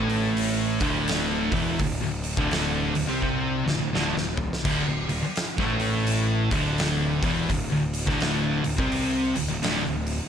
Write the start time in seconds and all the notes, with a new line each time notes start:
Already playing: A1 A2 A3
0.10 open hi-hat
0.37 open hi-hat
0.80 D1 D2 D3, kick, open hi-hat
1.08 snare, open hi-hat
1.52 E1 E2 E3, kick, open hi-hat
1.79 D1 D2, kick, open hi-hat
2.01 D1 D2
2.24 open hi-hat
2.37 D1 D2 D3, kick
2.51 snare, open hi-hat
2.94 D1 D2, open hi-hat
3.06 C2 C3 C4
3.22 kick
3.65 D1 D2, snare
3.79 D1 D2
3.93 D1 D2 D3, snare
4.15 D1 D2, snare
4.37 floor tom
4.53 snare
4.64 D1 D2 D3, kick, open hi-hat, crash
4.87 D1 D2
5.09 D1 D2, open hi-hat
5.23 muted picked electric bass stroke, muted distorted electric guitar stroke
5.36 snare, open hi-hat
5.58 A1 A2 A3, kick, snare
5.80 open hi-hat
6.07 open hi-hat
6.51 D1 D2 D3, kick, open hi-hat
6.78 snare, open hi-hat
7.23 E1 E2 E3, kick, open hi-hat
7.49 D1 D2, kick, open hi-hat
7.70 D1 D2
7.94 open hi-hat
8.06 D1 D2 D3, kick, snare
8.20 snare, open hi-hat
8.63 D1 D2, open hi-hat
8.77 C2 C3 C4, kick
8.92 open hi-hat
9.35 D1 D2, open hi-hat
9.48 D1 D2
9.62 D1 D2 D3, snare, open hi-hat
9.84 D1 D2
10.07 open hi-hat